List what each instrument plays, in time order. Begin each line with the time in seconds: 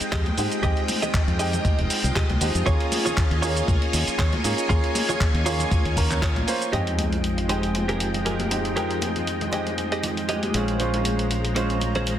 Already playing: grand piano G#3 C4 D#4 G5, string machine G#3 F4 D#5 G5
0.01 muted fingered electric bass stroke, closed hi-hat, shaker
0.12 fingered electric bass F2, clean electric guitar G4 G#4 D#5, kick, clap, closed hi-hat, shaker
0.26 closed hi-hat, high conga
0.37 fingered electric bass G#2, grand piano G#3 C4 D#4 G4, muted clean electric guitar stroke, open hi-hat, shaker
0.52 closed hi-hat, shaker
0.62 fingered electric bass F2, grand piano G#3 C4 D#4 G5, clean electric guitar G4 G#4 D#5, kick, closed hi-hat, shaker
0.77 closed hi-hat
0.88 open hi-hat, high conga, shaker
1.02 clean electric guitar G4 G#4 D#5, closed hi-hat, low conga, shaker
1.14 kick, clap, closed hi-hat, shaker
1.28 fingered electric bass F2, closed hi-hat
1.38 grand piano G#3 C4 D#4 G5, clean electric guitar G4 G#4 D#5, open hi-hat, shaker
1.53 closed hi-hat, low conga, shaker
1.65 kick, closed hi-hat, high conga, shaker
1.79 fingered electric bass F1, closed hi-hat
1.90 open hi-hat, shaker
2.04 fingered electric bass C2, closed hi-hat, low conga, shaker
2.15 clean electric guitar G4 G#4 D#5, kick, clap, closed hi-hat, shaker
2.29 fingered electric bass C2, closed hi-hat, high conga
2.41 fingered electric bass D#2, grand piano G#3 C4 D#4 G4, muted clean electric guitar stroke, open hi-hat, shaker
2.55 fingered electric bass F2, closed hi-hat, shaker
2.65 fingered electric bass D#2, grand piano A#3 C#4 F4 G#4, clean electric guitar F4 G#4 C#5, string machine C#5 G#5, kick, closed hi-hat, shaker
2.80 closed hi-hat
2.92 open hi-hat, high conga, shaker
3.05 clean electric guitar F4 G#4 C#5, closed hi-hat, low conga, shaker
3.17 kick, clap, closed hi-hat, shaker
3.31 fingered electric bass D#2, closed hi-hat
3.42 grand piano A#3 C#4 F4 G#4, clean electric guitar F4 G#4 C#5, open hi-hat, shaker
3.57 closed hi-hat, shaker
3.68 fingered electric bass C#2, kick, closed hi-hat, high conga, shaker
3.82 closed hi-hat
3.93 fingered electric bass D#2, open hi-hat, shaker
4.07 muted fingered electric bass stroke, closed hi-hat, shaker
4.18 fingered electric bass D#2, clean electric guitar F4 G#4 C#5, kick, clap, closed hi-hat, shaker
4.33 closed hi-hat, high conga
4.44 fingered electric bass G#2, grand piano A#3 C#4 F4 G#4, muted clean electric guitar stroke, open hi-hat, shaker
4.58 closed hi-hat, shaker
4.68 fingered electric bass D#2, grand piano A#3 C#4 F4 G#4, clean electric guitar F4 G#4 C#5, kick, closed hi-hat, shaker
4.84 closed hi-hat
4.95 open hi-hat, high conga, shaker
5.09 clean electric guitar F4 G#4 C#5, closed hi-hat, low conga, shaker
5.21 kick, clap, closed hi-hat, shaker
5.34 fingered electric bass D#2, closed hi-hat
5.45 grand piano A#3 C#4 F4 G#4, clean electric guitar F4 G#4 C#5, open hi-hat, shaker
5.60 closed hi-hat, low conga, shaker
5.71 kick, closed hi-hat, high conga, shaker
5.85 fingered electric bass D#2, closed hi-hat
5.96 grand piano A#3 C#4 F4 A#4, kick, open hi-hat, shaker
6.11 clap, closed hi-hat, low conga, shaker
6.22 clean electric guitar F4 G#4 C#5, kick, clap, closed hi-hat, shaker
6.36 fingered electric bass A#1, closed hi-hat, high conga
6.47 grand piano A#3 C#4 F4 C5, muted clean electric guitar stroke, open hi-hat, shaker
6.62 closed hi-hat, shaker
6.72 fingered electric bass F2, grand piano G#3 C4 D#4 G5, string machine G#3 F4 D#5 G5, clean electric guitar G4 G#4 D#5, closed hi-hat, sub drop, shaker
6.87 closed hi-hat, high bongo, shaker
6.99 closed hi-hat, high conga, shaker
7.12 closed hi-hat, high bongo, shaker
7.24 closed hi-hat, shaker
7.38 muted clean electric guitar stroke, closed hi-hat, shaker
7.48 grand piano G#3 C4 D#4 G5, clean electric guitar G4 G#4 C5, closed hi-hat, high bongo, shaker
7.63 closed hi-hat, shaker
7.75 closed hi-hat, high bongo, high conga, shaker
7.88 clean electric guitar G4 G#4 A#4, closed hi-hat, low conga, shaker
8.00 closed hi-hat, shaker
8.14 closed hi-hat, high bongo, low conga, shaker
8.25 clean electric guitar G4 G#4 A#4, closed hi-hat, shaker
8.39 closed hi-hat, high bongo, high conga, shaker
8.50 grand piano G#3 C4 D#4 G4, closed hi-hat, shaker
8.65 closed hi-hat, shaker
8.75 grand piano G#3 C4 D#4 G5, clean electric guitar G4 G#4 A#4, closed hi-hat, high bongo, shaker
8.91 closed hi-hat, shaker
9.02 closed hi-hat, high bongo, high conga, shaker
9.16 closed hi-hat, low conga, shaker
9.27 closed hi-hat, shaker
9.41 muted clean electric guitar stroke, closed hi-hat, high bongo, low conga, shaker
9.51 grand piano G#3 C4 D#4 G5, clean electric guitar G4 G#4 D#5, closed hi-hat, shaker
9.66 closed hi-hat, high bongo, shaker
9.78 closed hi-hat, high conga, shaker
9.92 clean electric guitar G4 G#4 D#5, closed hi-hat, shaker
10.03 closed hi-hat, high bongo, low conga, shaker
10.17 closed hi-hat, shaker
10.29 clean electric guitar G4 G#4 D#5, closed hi-hat, high bongo, shaker
10.43 closed hi-hat, high conga, shaker
10.54 fingered electric bass A#1, grand piano G#3 C4 C#4 F4, clean electric guitar C#4 G#4 C5, string machine C5 A#5, closed hi-hat, shaker
10.68 closed hi-hat, high bongo, shaker
10.79 grand piano G#3 C#4 F4 C5, closed hi-hat, shaker
10.93 closed hi-hat, high bongo, shaker
11.05 closed hi-hat, high conga, shaker
11.19 closed hi-hat, shaker
11.31 closed hi-hat, high bongo, shaker
11.44 muted clean electric guitar stroke, closed hi-hat, shaker
11.55 grand piano G#3 C#4 F4 C5, clean electric guitar C#4 G#4 C5, closed hi-hat, high bongo, shaker
11.70 closed hi-hat, shaker
11.81 closed hi-hat, high conga, shaker
11.94 clean electric guitar C#4 G#4 C5, closed hi-hat, high bongo, low conga, shaker
12.06 closed hi-hat, shaker